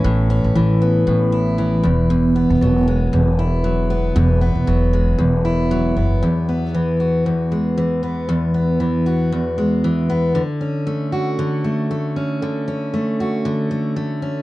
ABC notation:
X:1
M:4/4
L:1/16
Q:"Swing 16ths" 1/4=116
K:Emix
V:1 name="Steel-string acoustic guitar" clef=bass
[A,,E,B,CE]2 C2 E,2 B,2 A,,2 E2 E,2 E,,2 | E,,2 B,2 F,2 G,2 E,,2 E2 F,2 B,2 | E,,2 B,2 F,2 G,2 E,,2 E2 F,2 B,2 | E,,2 B,2 E,2 F2 E,,2 G,2 E,2 B,2 |
E,,2 B,2 E,2 F2 E,,2 G,2 E,2 B,2 | D,2 C2 A,2 F2 D,2 A,2 A,2 C2 | D,2 C2 A,2 F2 D,2 A,2 A,2 C2 |]
V:2 name="Upright bass" clef=bass
A,,,3 A,,, A,,,4 A,,,6 E,,,2- | E,,,3 E,,, E,,,4 E,,,8 | E,,,3 E,,, E,,,4 E,,,6 F,,,2 | z16 |
z16 | z16 | z16 |]